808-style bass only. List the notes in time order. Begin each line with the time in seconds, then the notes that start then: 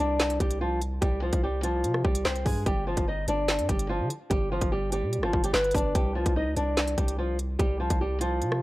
0.00 C2
0.40 C2
1.02 C2
1.33 C2
1.84 C3
2.05 C2
2.25 C2
2.46 G2
2.66 G1
2.97 G1
3.28 G1
3.59 G2
3.69 G1
4.00 D3
4.31 G1
4.62 G1
5.03 B2
5.18 G1
5.33 G1
5.54 G1
5.75 G1
5.95 C2
6.26 C2
6.46 D2
6.57 C2
6.98 C2
7.59 C2
7.90 C2
8.42 C3